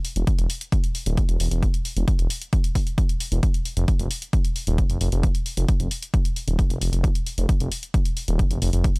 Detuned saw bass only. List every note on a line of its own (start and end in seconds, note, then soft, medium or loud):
0.16 0.24 E1 loud
0.39 0.47 E1 medium
1.06 1.22 D1 loud
1.29 1.37 E1 loud
1.40 1.48 E1 loud
1.51 1.67 E1 loud
1.97 2.05 E1 loud
2.19 2.27 E1 medium
3.32 3.40 E1 medium
3.77 3.85 F1 loud
3.99 4.07 F1 medium
4.67 4.83 D#1 loud
4.90 4.98 F1 loud
5.01 5.09 F1 loud
5.12 5.28 F1 loud
5.57 5.65 F1 loud
5.80 5.88 F1 medium
6.48 6.64 D#1 loud
6.70 6.78 F1 loud
6.81 6.89 F1 loud
6.93 7.09 F1 loud
7.38 7.46 F1 loud
7.61 7.68 F1 medium
8.28 8.44 D#1 loud
8.51 8.59 F1 loud
8.62 8.70 F1 medium
8.73 8.89 F1 loud